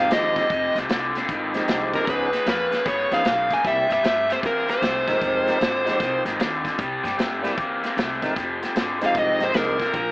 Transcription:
Already playing: F3 G#3 C4 F5
0.00 D#4 G4
0.11 D#2 F2 D3 D#5, snare, closed hi-hat
0.36 F2 D3, kick, snare, closed hi-hat
0.50 F1 F2 C3, kick, closed hi-hat
0.75 C2 F2 C3, snare, closed hi-hat
0.89 C2 F2 D3, snare, closed hi-hat
1.15 F2 D3, snare, closed hi-hat
1.29 G#1 F2 D#3, kick, closed hi-hat
1.54 F2 D#3 F3 G#3 C4 D#4 G4, snare, closed hi-hat
1.68 C2 F2 D3, snare, closed hi-hat
1.93 F2 D3 A#4, kick, snare, closed hi-hat
2.05 C#2 C#3 F3 G#3 B3 C#4 D#4 G#4 A#4, kick, snare, closed hi-hat
2.10 B4
2.32 C#3 G#3, snare, closed hi-hat
2.46 F2 C#3 A#3 B4, snare, closed hi-hat
2.72 C#3 A#3, snare, closed hi-hat
2.85 G#2 C#3 B3 C#5, kick, snare, closed hi-hat
3.11 F2 C#3 F3 B3 C#4 D#4 G#4 F5, snare, closed hi-hat
3.25 B1 C#3 A#3, snare, closed hi-hat
3.51 C#3 A#3 G#5, kick, snare, closed hi-hat
3.64 C2 C3 G3 A#3 C4 E4 G4 E5, kick, snare, closed hi-hat
3.89 G2 C3 G3 E5, snare, closed hi-hat
4.03 G2 C3 A3, snare, closed hi-hat
4.29 C3 A3 C5, snare, closed hi-hat
4.43 E2 C3 A#3 A#4, kick, snare, closed hi-hat
4.68 C3 A#3 C5, snare, closed hi-hat
4.82 C2 C3 A3, snare, closed hi-hat
5.07 C3 F3 G#3 A3 C4 D#4 A#4, kick, snare, closed hi-hat
5.21 F1 F2 C3, kick, closed hi-hat
5.46 F2 C3, snare, closed hi-hat
5.60 G#1 F2 D3, snare, closed hi-hat
5.85 F2 D3 F3 G#3 C4 D#4 G4, snare, closed hi-hat
5.99 C2 F2 D#3, kick, snare, closed hi-hat
6.25 G#1 F2 D#3, snare, closed hi-hat
6.39 D#2 F2 D3, snare, closed hi-hat
6.64 F2 D3, kick, snare, closed hi-hat
6.78 C2 C3 G3, kick, closed hi-hat
7.04 G2 C3 G3, snare, closed hi-hat
7.18 G2 C3 A3, snare, closed hi-hat
7.42 C3 G3 A3 A#3 C4 E4 G4, snare, closed hi-hat
7.57 E2 C3 A#3, kick, closed hi-hat
7.83 C3 A#3, snare, closed hi-hat
7.97 C2 C3 A3, snare, closed hi-hat
8.22 C3 F3 G#3 A3 C4 D#4 A#4, kick, snare, closed hi-hat
8.36 F1 F2 C3, kick, snare, closed hi-hat
8.62 F2 C3, snare, closed hi-hat
8.76 G#1 F2 D3, snare, closed hi-hat
9.01 F2 D3 F3 G#3 C4 D#4 G4, snare, closed hi-hat
9.06 F5
9.15 C2 F2 D#3, kick, closed hi-hat
9.19 D#5
9.40 G#1 F2 D#3 C5, snare, closed hi-hat
9.54 C2 F2 D3 F3 G#3 C4 D#4 G#4 A#4, snare, closed hi-hat
9.79 F2 D3, kick, snare, closed hi-hat
9.93 A#1 A#2 F3, kick, closed hi-hat

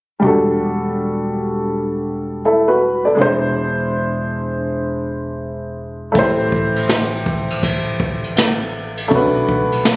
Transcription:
0.20 E1 G3 D4
0.24 F#4 A4
2.45 E4 A4
2.68 F#4 B4
3.05 A4 D5
3.15 E1 G#3 D4
3.19 E4 C5
6.12 A1 A3 E4, kick, ride
6.16 G4 C5
6.52 kick
6.76 ride
6.89 snare, hi-hat pedal, ride
7.26 kick
7.50 ride
7.63 kick, ride
8.00 kick
8.24 ride
8.37 snare, hi-hat pedal, ride
8.97 ride
9.08 B1 A3 C#4, kick, ride
9.13 F#4 B4
9.17 D4
9.49 kick
9.72 ride
9.85 snare, hi-hat pedal, ride

